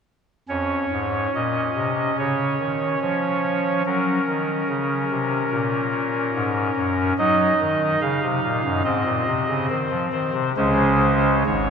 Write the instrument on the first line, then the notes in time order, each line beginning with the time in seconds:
pipe organ
0.48 F2 C#4 C#5
0.91 G#2
1.34 A#2 D#5
1.76 C3
2.18 C#3 C#5
2.59 D#3
3.01 F3 C#5
3.85 F#3 C#4 A#4
4.28 D#3
4.69 C#3
5.11 C3
5.52 A#2
6.34 G#2
6.76 F#2
7.18 F#3 D#4 D#5
7.61 D#3
8.01 C#3 F5
8.23 C3
8.44 A#2
8.64 F#2
8.84 G#2 C4 D#5
9.05 A#2
9.27 C3
9.49 C#3
9.69 D#3 C5
9.91 F3
10.12 D#3 C5
10.34 C3
10.56 C#2 C#3 G#3 C#4 C5
11.46 G#1 G#2 C#5